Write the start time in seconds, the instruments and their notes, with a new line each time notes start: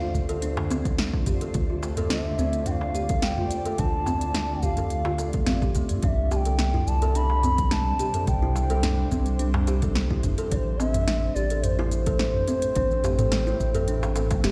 Already playing: ambient pad D3 A3 F4 C5 D5, bansuri F5
0.01 kalimba F4
0.14 analog synth bass D2, kick, shaker
0.29 kalimba A4, closed hi-hat, shaker
0.42 kalimba D4, closed hi-hat, shaker
0.57 mid tom, darbuka tek
0.70 kalimba C4, closed hi-hat, darbuka ka, shaker
0.85 kick, closed hi-hat, shaker
0.98 kalimba D4, snare, closed hi-hat, shaker
1.13 kick
1.26 analog synth bass A1, kalimba G4, kick, closed hi-hat, mid tom, shaker
1.41 kalimba A4, closed hi-hat, shaker
1.54 analog synth bass D2, kick, closed hi-hat, shaker
1.70 kalimba F4
1.83 darbuka tek, shaker
1.97 kalimba A4, closed hi-hat, mid tom, shaker
2.10 kalimba D4, bansuri E5, snare, closed hi-hat, shaker
2.39 analog synth bass D2, kalimba C4, shaker
2.53 closed hi-hat, shaker
2.66 kalimba D4, bansuri G5, closed hi-hat, mid tom, shaker
2.71 bansuri F5
2.81 darbuka ka
2.95 kalimba G4, closed hi-hat, shaker
3.09 kalimba A4, kick, closed hi-hat, shaker
3.22 bansuri G5, snare, closed hi-hat, shaker
3.37 kalimba F4, mid tom
3.51 closed hi-hat, shaker
3.65 kalimba A4, closed hi-hat, shaker
3.78 analog synth bass D2, kalimba D4, bansuri A5, kick, closed hi-hat, shaker
4.06 kalimba C4, mid tom, darbuka tek, shaker
4.21 closed hi-hat, shaker
4.35 kalimba D4, snare, closed hi-hat, shaker
4.63 analog synth bass D2, kalimba G4, bansuri F5, kick, shaker
4.77 kalimba A4, closed hi-hat, mid tom, darbuka tek, shaker
4.90 closed hi-hat, shaker
5.05 kalimba F4, darbuka tek
5.18 kalimba A4, closed hi-hat, darbuka ka, shaker
5.33 kalimba A4, kick, closed hi-hat, shaker
5.47 analog synth bass A1, kalimba C4, snare, closed hi-hat, mid tom, shaker
5.62 kalimba G4, kick, shaker
5.75 analog synth bass D2, kalimba A3, kick, closed hi-hat, shaker
5.89 analog synth bass G2, closed hi-hat, shaker
6.03 analog synth bass C2, ambient pad C3, kalimba D4, bansuri F5, kick, closed hi-hat, mid tom, shaker
6.08 bansuri E5
6.15 ambient pad G3
6.30 kalimba G4, ambient pad C5, bansuri A5, darbuka tek, shaker
6.36 bansuri G5
6.45 kalimba A4, closed hi-hat, shaker
6.59 ambient pad D4, snare, closed hi-hat, shaker
6.74 kalimba E4, mid tom
6.87 analog synth bass C2, bansuri A5, shaker
7.02 kalimba A4, closed hi-hat, shaker
7.15 kalimba D4, bansuri B5, closed hi-hat, shaker
7.30 darbuka ka
7.43 kalimba C4, closed hi-hat, mid tom, shaker
7.58 kick, closed hi-hat, shaker
7.71 kalimba D4, bansuri A5, snare, closed hi-hat, shaker
7.99 kalimba G4, closed hi-hat, shaker
8.14 kalimba A4, closed hi-hat, mid tom, shaker
8.27 analog synth bass C2, bansuri G5, kick, closed hi-hat, shaker
8.42 kalimba E4
8.56 darbuka tek, shaker
8.70 kalimba A4, closed hi-hat, shaker
8.83 kalimba D4, snare, closed hi-hat, mid tom, shaker
9.11 analog synth bass C2, kalimba C4, kick, shaker
9.26 closed hi-hat, shaker
9.39 kalimba D4, closed hi-hat, shaker
9.54 mid tom, darbuka tek
9.67 kalimba G4, closed hi-hat, darbuka ka, shaker
9.82 kalimba A4, kick, closed hi-hat, shaker
9.95 snare, closed hi-hat, shaker
10.11 kalimba E4, kick
10.23 analog synth bass G1, kick, closed hi-hat, mid tom, shaker
10.38 kalimba A4, closed hi-hat, shaker
10.51 analog synth bass A1, ambient pad A2, kalimba D4, bansuri D5, kick, closed hi-hat, shaker
10.56 ambient pad A3, bansuri C5
10.75 ambient pad C4
10.79 kalimba C4, bansuri E5, darbuka tek, shaker
10.94 closed hi-hat, mid tom, shaker
11.08 kalimba D4, snare, closed hi-hat, shaker
11.35 analog synth bass A1, kalimba G4, bansuri D5, shaker
11.50 kalimba A4, closed hi-hat, shaker
11.63 bansuri C5, closed hi-hat, mid tom, shaker
11.70 ambient pad G5
11.79 kalimba E4, darbuka ka
11.91 closed hi-hat, shaker
12.06 kalimba A4, kick, closed hi-hat, shaker
12.19 kalimba D4, snare, closed hi-hat, shaker
12.34 mid tom
12.48 kalimba C4, closed hi-hat, shaker
12.62 closed hi-hat, shaker
12.75 analog synth bass A1, kalimba D4, kick, closed hi-hat, shaker
12.91 shaker
13.04 kalimba G4, closed hi-hat, mid tom, darbuka tek, shaker
13.19 kalimba A4, closed hi-hat, darbuka dum, shaker
13.32 snare, closed hi-hat, shaker
13.47 kalimba E4, shaker
13.60 analog synth bass A1, kick, shaker
13.75 kalimba A4, closed hi-hat, mid tom, darbuka tek, shaker
13.88 kalimba D4, closed hi-hat, shaker
14.03 darbuka tek, shaker
14.16 kalimba A4, closed hi-hat, darbuka ka, shaker
14.31 kick, closed hi-hat, darbuka tek, shaker
14.44 analog synth bass E1, kalimba G4, snare, closed hi-hat, mid tom, shaker